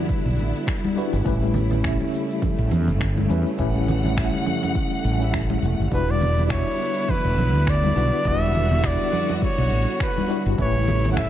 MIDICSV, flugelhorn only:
0, 0, Header, 1, 2, 480
1, 0, Start_track
1, 0, Tempo, 582524
1, 1041, Time_signature, 4, 2, 24, 8
1, 9306, End_track
2, 0, Start_track
2, 0, Title_t, "Flugelhorn"
2, 0, Program_c, 0, 56
2, 4891, Note_on_c, 0, 71, 92
2, 5032, Note_on_c, 0, 74, 100
2, 5044, Note_off_c, 0, 71, 0
2, 5317, Note_off_c, 0, 74, 0
2, 5317, Note_on_c, 0, 74, 67
2, 5363, Note_on_c, 0, 73, 96
2, 5375, Note_off_c, 0, 74, 0
2, 5849, Note_on_c, 0, 71, 101
2, 5862, Note_off_c, 0, 73, 0
2, 6340, Note_on_c, 0, 74, 100
2, 6352, Note_off_c, 0, 71, 0
2, 6818, Note_on_c, 0, 76, 114
2, 6830, Note_off_c, 0, 74, 0
2, 7299, Note_on_c, 0, 74, 102
2, 7312, Note_off_c, 0, 76, 0
2, 7715, Note_off_c, 0, 74, 0
2, 7720, Note_on_c, 0, 74, 67
2, 7774, Note_on_c, 0, 73, 98
2, 7787, Note_off_c, 0, 74, 0
2, 8248, Note_off_c, 0, 73, 0
2, 8256, Note_on_c, 0, 71, 90
2, 8598, Note_off_c, 0, 71, 0
2, 8743, Note_on_c, 0, 73, 102
2, 9133, Note_off_c, 0, 73, 0
2, 9160, Note_on_c, 0, 78, 72
2, 9216, Note_on_c, 0, 76, 100
2, 9228, Note_off_c, 0, 78, 0
2, 9306, Note_off_c, 0, 76, 0
2, 9306, End_track
0, 0, End_of_file